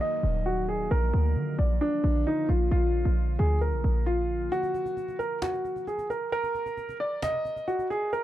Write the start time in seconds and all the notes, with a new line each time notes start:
Already playing: D#3 F#3 A#3 F#4, downlifter
0.01 D#5
0.23 D#1
0.46 F#4
0.68 G#4
0.91 A#1 D3 F3 F4 A#4
1.13 D2
1.36 D3
1.59 A#1 D5
1.81 D4
2.04 A#1
2.27 D#4
2.49 A#1 F4
2.71 A#1 F4
3.05 A#1
3.39 D2 G#4
3.61 A#4
3.73 B1
3.84 A#1
4.06 F4
4.52 F#4, cajon slap
4.63 cajon slap
4.74 cajon slap
4.86 cajon slap
4.97 cajon slap
5.08 cajon slap
5.19 A#4, cajon slap
5.42 F#4, cajon slap
5.54 cajon slap
5.65 cajon slap
5.76 cajon slap
5.87 G#4, cajon slap
5.98 cajon slap
6.10 A#4, cajon slap
6.32 A#4, cajon slap
6.44 cajon slap
6.55 cajon slap
6.66 cajon slap
6.77 cajon slap
6.89 cajon slap
7.00 D5
7.22 D#5, cajon slap
7.34 cajon slap
7.45 cajon slap
7.56 cajon slap
7.68 F#4, cajon slap
7.79 cajon slap
7.90 G#4, cajon slap
8.13 A#4, cajon slap